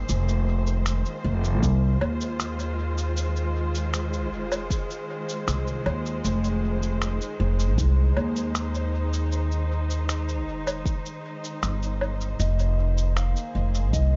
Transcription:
0.00 14.16 D#3 medium
0.00 2.62 A#3 medium
0.00 1.53 G#4 medium
0.00 0.10 C5 medium
0.00 14.16 C5 medium
0.09 1.02 F1 medium
0.09 shaker medium
0.28 shaker soft
0.67 shaker soft
0.75 12.40 G#3 medium
0.86 finger snap medium
0.86 shaker medium
1.03 7.32 F4 medium
1.03 shaker soft
1.24 1.63 F1 loud
1.44 shaker soft
1.63 1.97 C2 medium
1.63 kick loud
1.63 shaker medium
2.01 4.32 D#2 loud
2.01 low woodblock medium
2.21 shaker soft
2.40 finger snap medium
2.40 shaker medium
2.59 shaker soft
2.98 shaker soft
3.17 shaker medium
3.36 shaker soft
3.75 shaker soft
3.94 finger snap medium
3.94 shaker medium
4.13 shaker soft
4.32 4.66 F1 loud
4.52 low woodblock medium
4.52 shaker soft
4.71 kick loud
4.71 shaker medium
4.90 shaker soft
5.29 shaker soft
5.48 5.81 C2 medium
5.48 finger snap medium
5.48 shaker medium
5.67 shaker soft
5.86 6.20 D#2 loud
5.86 low woodblock medium
6.06 shaker soft
6.24 7.17 F1 loud
6.24 shaker medium
6.44 shaker soft
6.83 shaker soft
7.02 finger snap medium
7.02 shaker medium
7.09 14.16 D#4 medium
7.21 shaker soft
7.40 7.78 F1 loud
7.59 shaker soft
7.78 8.12 C2 medium
7.78 kick loud
7.78 shaker medium
8.17 10.47 D#2 loud
8.17 low woodblock medium
8.36 shaker soft
8.55 finger snap medium
8.55 shaker medium
8.75 shaker soft
9.13 shaker soft
9.32 shaker soft
9.52 shaker soft
9.90 shaker soft
10.09 finger snap medium
10.09 shaker medium
10.29 shaker soft
10.47 10.81 F1 loud
10.67 low woodblock medium
10.67 shaker soft
10.86 kick loud
10.86 shaker soft
11.06 shaker soft
11.44 shaker soft
11.63 12.36 G1 medium
11.63 finger snap medium
11.63 shaker medium
11.82 shaker soft
12.01 low woodblock medium
12.21 shaker soft
12.40 13.32 F1 loud
12.40 13.16 D#5 medium
12.40 shaker medium
12.59 shaker soft
12.98 shaker soft
13.16 13.93 F5 medium
13.16 finger snap medium
13.16 shaker soft
13.27 14.16 A#3 medium
13.35 14.16 G#4 medium
13.35 shaker soft
13.55 13.93 F1 loud
13.75 shaker soft
13.93 14.16 C2 medium
13.93 14.16 D#5 medium
13.93 kick loud
13.93 shaker soft

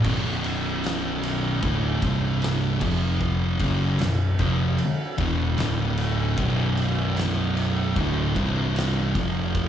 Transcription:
0.04 1.59 B0 medium
0.04 1.61 B1 loud
0.04 1.61 F#2 loud
0.04 1.62 B2 loud
0.04 kick loud
0.04 crash loud
0.44 ride medium
0.84 snare loud
0.84 ride medium
1.23 ride medium
1.61 1.99 D1 loud
1.61 2.00 D2 loud
1.61 2.01 A2 loud
1.61 2.01 D3 loud
1.61 kick loud
1.61 ride loud
2.01 2.77 C1 medium
2.01 2.79 C2 medium
2.01 2.80 G2 medium
2.01 2.80 C3 loud
2.01 kick loud
2.01 ride medium
2.42 snare loud
2.42 ride loud
2.81 3.56 F1 medium
2.81 3.59 F2 medium
2.81 3.59 C3 loud
2.81 3.59 F3 loud
2.81 kick loud
2.81 crash loud
3.21 kick loud
3.59 3.97 F#1 loud
3.59 3.98 F#2 loud
3.59 3.99 C#3 loud
3.59 3.99 F#3 loud
3.59 kick loud
3.59 ride medium
3.99 4.37 B0 medium
3.99 4.32 B1 medium
3.99 4.32 F#2 medium
3.99 snare loud
3.99 ride loud
4.39 4.76 F1 loud
4.39 4.78 F2 loud
4.39 4.78 C3 loud
4.39 4.78 F3 loud
4.39 kick loud
4.39 ride medium
4.78 ride loud
5.18 5.55 E1 medium
5.18 5.56 E2 medium
5.18 5.57 B2 loud
5.18 5.57 E3 loud
5.18 kick loud
5.18 ride medium
5.58 6.33 D1 loud
5.58 6.36 D2 loud
5.58 6.36 A2 loud
5.58 6.36 D3 loud
5.58 snare loud
5.58 ride loud
5.98 ride medium
6.37 7.92 B0 medium
6.37 7.94 B1 loud
6.37 7.95 F#2 loud
6.37 7.95 B2 loud
6.37 kick loud
6.37 ride loud
6.77 ride medium
7.17 snare loud
7.17 ride loud
7.57 ride medium
7.96 8.33 D1 loud
7.96 8.34 D2 loud
7.96 8.34 A2 loud
7.96 8.35 D3 loud
7.96 kick loud
7.96 ride loud
8.35 9.11 C1 medium
8.35 9.13 C2 loud
8.35 9.14 G2 loud
8.35 9.14 C3 loud
8.35 kick loud
8.35 ride medium
8.76 snare loud
8.76 ride loud
9.15 9.69 F1 medium
9.15 9.69 F2 loud
9.15 9.69 C3 loud
9.15 9.69 F3 loud
9.15 kick loud
9.15 ride medium
9.55 kick loud
9.55 ride loud

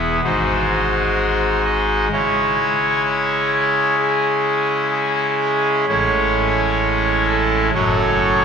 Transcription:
0.00 0.21 E1 soft
0.00 0.21 E2 soft
0.00 0.20 B3 soft
0.00 0.20 E4 soft
0.00 0.17 G#4 medium
0.24 2.08 G#1 soft
0.24 2.08 G#2 medium
0.24 2.08 G#3 soft
0.24 2.08 D#4 soft
0.24 2.08 F#4 soft
0.24 1.61 C5 medium
1.65 2.05 D#5 medium
2.12 5.85 C#3 soft
2.12 5.85 G#3 soft
2.12 5.85 C#4 soft
2.12 5.85 E4 soft
2.12 3.02 C#5 medium
3.04 3.96 C#5 medium
3.98 4.89 G#4 medium
4.91 5.86 G#4 medium
5.89 7.71 A1 soft
5.89 7.71 A2 medium
5.89 7.71 G#3 soft
5.89 7.71 C#4 soft
5.89 7.71 E4 soft
5.89 7.26 C#5 medium
7.29 7.68 A4 loud
7.74 8.45 F#1 medium
7.74 8.45 F#2 medium
7.74 8.45 F#3 soft
7.74 8.45 C#4 soft
7.74 8.45 A4 soft
7.74 8.45 C#5 loud

